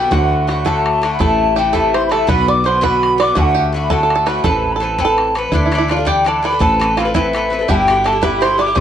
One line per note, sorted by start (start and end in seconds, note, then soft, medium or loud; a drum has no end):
0.00 0.11 B2 medium
0.00 0.10 D3 medium
0.00 0.12 B3 medium
0.00 0.12 F#4 medium
0.00 0.12 G4 medium
0.00 0.15 G5 medium
0.11 1.18 D2 medium
0.11 0.46 A2 medium
0.11 0.48 D3 medium
0.11 0.49 A3 medium
0.11 0.46 F#4 medium
0.11 0.49 F#4 medium
0.11 0.49 F#5 medium
0.11 bodhran medium
0.31 bodhran soft
0.47 0.63 A2 medium
0.47 0.64 D3 medium
0.47 0.65 A3 medium
0.47 0.66 F#4 medium
0.47 0.69 F#5 medium
0.47 bodhran medium
0.65 1.00 A2 medium
0.65 1.02 D3 medium
0.65 1.03 A3 medium
0.65 1.03 F#4 medium
0.65 1.19 A4 medium
0.65 1.12 A5 loud
0.65 bodhran medium
0.86 bodhran medium
1.02 1.18 A2 medium
1.02 1.19 D3 medium
1.02 1.20 A3 medium
1.02 1.21 F#4 medium
1.02 bodhran medium
1.13 1.23 B5 medium
1.19 2.26 A1 medium
1.19 1.55 C3 medium
1.19 1.56 E3 medium
1.19 1.57 A3 medium
1.19 1.58 E4 medium
1.19 1.54 A4 medium
1.19 1.57 A5 loud
1.19 bodhran medium
1.30 bodhran soft
1.56 1.72 C3 medium
1.56 1.73 E3 medium
1.56 1.74 A3 medium
1.56 1.74 E4 medium
1.56 1.72 G4 medium
1.56 1.76 G5 medium
1.73 2.08 C3 medium
1.73 2.10 E3 medium
1.73 2.11 A3 medium
1.73 2.11 E4 medium
1.73 1.92 A4 medium
1.73 1.96 A5 medium
1.73 bodhran medium
1.94 2.10 C5 medium
1.94 2.05 C6 medium
1.94 bodhran medium
2.06 2.27 C3 medium
2.06 2.13 B5 medium
2.11 2.27 E3 medium
2.11 2.28 A3 medium
2.11 2.29 E4 medium
2.11 2.27 A4 medium
2.11 2.30 A5 loud
2.11 bodhran medium
2.27 3.34 B1 medium
2.27 2.63 B2 medium
2.27 2.64 D3 medium
2.27 2.65 B3 medium
2.27 2.66 F#4 medium
2.27 2.47 B4 medium
2.27 2.51 B5 loud
2.27 bodhran medium
2.48 2.64 D5 loud
2.48 2.67 D6 medium
2.48 bodhran soft
2.64 2.80 B2 medium
2.64 2.81 D3 medium
2.64 2.82 B3 medium
2.64 2.82 F#4 medium
2.64 2.81 C5 medium
2.64 2.85 C6 loud
2.81 3.17 B2 medium
2.81 3.18 D3 medium
2.81 3.19 B3 medium
2.81 3.20 F#4 medium
2.81 3.17 B4 loud
2.81 3.23 B5 loud
2.81 bodhran medium
3.03 bodhran medium
3.18 3.35 B2 medium
3.18 3.35 D3 medium
3.18 3.37 B3 medium
3.18 3.37 F#4 medium
3.18 3.35 D5 medium
3.18 3.37 D6 loud
3.18 bodhran medium
3.35 4.42 D2 loud
3.35 3.71 A2 medium
3.35 3.73 D3 medium
3.35 3.74 A3 medium
3.35 3.56 F#4 medium
3.35 3.74 F#4 medium
3.35 3.42 A5 loud
3.35 bodhran medium
3.41 3.63 F#5 loud
3.55 3.71 G4 medium
3.55 bodhran soft
3.73 3.89 A2 medium
3.73 3.90 D3 medium
3.73 3.90 A3 medium
3.73 3.91 F#4 medium
3.84 3.92 B5 medium
3.90 4.25 A2 medium
3.90 4.26 D3 medium
3.90 4.28 A3 medium
3.90 4.28 F#4 medium
3.90 4.02 A4 medium
3.90 4.29 A5 loud
3.90 bodhran medium
4.03 4.14 A4 medium
4.10 bodhran medium
4.16 4.26 A4 medium
4.26 4.43 A2 medium
4.26 4.44 D3 medium
4.26 4.45 A3 medium
4.26 4.45 F#4 medium
4.26 4.43 B4 medium
4.26 4.45 B5 medium
4.26 bodhran medium
4.44 5.50 A1 loud
4.44 4.80 E3 medium
4.44 4.80 C4 medium
4.44 4.73 A4 medium
4.44 4.82 A4 medium
4.44 4.82 B4 medium
4.44 4.51 B5 medium
4.44 bodhran medium
4.50 4.73 A5 medium
4.54 bodhran soft
4.64 bodhran soft
4.72 5.03 A4 medium
4.72 4.78 B5 medium
4.76 4.97 E3 medium
4.76 5.02 A5 medium
4.82 4.98 C4 medium
4.82 4.99 A4 medium
4.82 4.99 B4 medium
4.98 5.34 E3 medium
4.98 5.35 C4 medium
4.98 5.37 A4 medium
4.98 5.36 B4 medium
4.98 5.07 G5 medium
4.98 bodhran medium
5.05 5.33 A4 medium
5.05 5.36 A5 loud
5.18 bodhran medium
5.35 5.51 E3 medium
5.35 5.53 C4 medium
5.35 5.53 A4 medium
5.35 5.54 B4 medium
5.35 bodhran medium
5.52 6.58 D2 medium
5.52 5.70 E3 medium
5.52 5.72 D4 medium
5.52 5.65 E4 medium
5.52 5.73 A4 medium
5.52 5.73 D5 medium
5.52 5.92 E5 loud
5.52 bodhran medium
5.66 5.77 E4 medium
5.71 5.87 E3 medium
5.71 5.88 D4 medium
5.71 5.90 A4 medium
5.71 5.91 D5 medium
5.71 bodhran medium
5.78 5.90 E4 medium
5.88 5.97 E3 medium
5.88 5.98 D4 medium
5.88 6.06 F4 medium
5.88 5.97 A4 medium
5.88 5.95 D5 medium
5.88 6.09 F5 medium
5.88 bodhran soft
5.96 6.05 D4 soft
5.96 6.05 A4 soft
5.96 6.00 D5 medium
6.05 6.23 E3 medium
6.05 6.25 D4 medium
6.05 6.25 G4 medium
6.05 6.26 A4 medium
6.05 6.26 D5 medium
6.05 6.29 G5 medium
6.05 bodhran medium
6.24 6.41 E3 medium
6.24 6.43 D4 medium
6.24 6.43 A4 medium
6.24 6.45 A4 medium
6.24 6.44 D5 medium
6.24 6.46 A5 medium
6.24 bodhran medium
6.42 6.51 E3 medium
6.42 6.52 D4 medium
6.42 6.51 A4 medium
6.42 6.60 B4 medium
6.42 6.50 D5 medium
6.42 6.61 B5 loud
6.51 6.61 D4 soft
6.51 6.60 A4 soft
6.51 6.54 D5 medium
6.59 7.66 A1 medium
6.59 6.78 E3 medium
6.59 6.80 C4 medium
6.59 6.99 A4 medium
6.59 6.81 A4 medium
6.59 6.81 B4 medium
6.59 7.00 A5 loud
6.59 bodhran medium
6.80 6.96 E3 medium
6.80 6.97 C4 medium
6.80 6.98 A4 medium
6.80 6.99 B4 medium
6.80 bodhran medium
6.97 7.06 E3 medium
6.97 7.06 C4 medium
6.97 7.13 F4 medium
6.97 7.06 A4 medium
6.97 7.04 B4 medium
6.97 7.15 F5 medium
6.97 bodhran medium
7.05 7.14 C4 soft
7.05 7.15 A4 medium
7.05 7.14 B4 medium
7.14 7.32 E3 medium
7.14 7.34 C4 medium
7.14 7.70 E4 medium
7.14 7.35 A4 loud
7.14 7.35 B4 medium
7.14 7.71 E5 medium
7.14 bodhran medium
7.33 7.49 E3 medium
7.33 7.50 C4 medium
7.33 7.51 A4 medium
7.33 7.53 B4 medium
7.33 bodhran medium
7.50 7.59 E3 medium
7.50 7.60 C4 medium
7.50 7.60 A4 medium
7.50 7.58 B4 medium
7.59 7.68 C4 soft
7.59 7.69 A4 soft
7.59 7.68 B4 soft
7.68 8.75 G1 loud
7.68 7.86 B2 medium
7.68 7.87 D3 medium
7.68 7.89 E4 medium
7.68 8.06 G4 medium
7.68 7.89 G4 medium
7.68 7.75 A5 loud
7.68 bodhran medium
7.74 8.08 G5 loud
7.87 8.03 B2 medium
7.87 8.04 D3 medium
7.87 8.05 E4 medium
7.87 8.07 G4 medium
7.87 bodhran medium
8.04 8.13 B2 medium
8.04 8.14 D3 medium
8.04 8.13 E4 medium
8.04 8.11 G4 medium
8.04 8.21 A4 medium
8.04 8.25 A5 medium
8.04 bodhran medium
8.12 8.21 D3 soft
8.12 8.22 E4 soft
8.12 8.22 G4 medium
8.21 8.39 B2 medium
8.21 8.41 D3 medium
8.21 8.42 E4 loud
8.21 8.43 G4 medium
8.21 8.41 B4 medium
8.21 8.44 B5 loud
8.21 bodhran medium
8.41 8.57 B2 medium
8.41 8.58 D3 medium
8.41 8.59 E4 medium
8.41 8.60 G4 medium
8.41 8.58 C5 medium
8.41 8.62 C6 loud
8.41 bodhran medium
8.58 8.67 B2 medium
8.58 8.68 D3 medium
8.58 8.67 E4 medium
8.58 8.65 G4 medium
8.58 8.75 D5 medium
8.58 8.79 D6 loud
8.66 8.75 D3 soft
8.66 8.76 E4 medium
8.66 8.76 G4 medium
8.75 8.80 C2 loud
8.75 8.80 C3 medium
8.75 8.80 E3 medium
8.75 8.80 A3 medium
8.75 8.80 G4 medium
8.75 8.80 C5 medium
8.75 8.80 C6 loud
8.75 bodhran medium